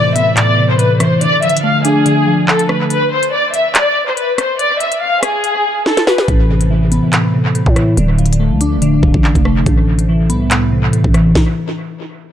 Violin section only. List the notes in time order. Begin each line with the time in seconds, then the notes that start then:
Already playing: D5
0.16 E5
0.37 D5
0.69 C5
0.79 B4
1.00 C5
1.21 D5
1.43 E5
1.64 F5
1.85 G#4
2.48 A4
2.69 B4
2.90 B4
3.12 C5
3.32 D5
3.54 E5
3.75 D5
4.07 C5
4.17 B4
4.38 C5
4.60 D5
4.80 E5
5.01 F5
5.23 G#4
5.86 A4
6.07 B4